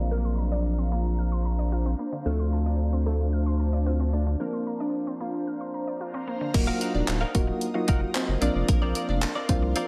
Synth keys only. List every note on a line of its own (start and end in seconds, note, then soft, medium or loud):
0.00 1.95 F3 medium
0.00 1.95 A#3 medium
0.00 1.95 C4 medium
0.00 1.95 D4 medium
2.25 4.36 F3 medium
2.25 4.36 A3 medium
2.25 4.36 C4 medium
2.25 4.36 D4 medium
4.40 6.50 F3 medium
4.40 6.50 A#3 medium
4.40 6.50 C4 medium
4.40 6.51 D4 medium
6.54 7.18 F#3 medium
6.54 7.18 A#3 medium
6.54 7.18 D#4 medium
6.54 7.18 F4 medium
6.54 7.18 F#4 medium
7.34 7.67 F#3 medium
7.34 7.67 A#3 medium
7.34 7.67 D#4 medium
7.34 7.67 F4 medium
7.34 7.67 F#4 medium
7.75 8.42 F#3 medium
7.75 8.41 A#3 medium
7.75 8.42 D#4 medium
7.75 8.41 F4 medium
7.75 8.42 F#4 medium
8.42 9.28 F3 medium
8.42 9.28 A#3 medium
8.42 9.28 C4 medium
8.42 9.28 D4 medium
8.42 9.28 F4 medium
9.49 9.81 F3 medium
9.49 9.81 A#3 medium
9.49 9.81 C4 medium
9.49 9.81 D4 medium
9.49 9.81 F4 medium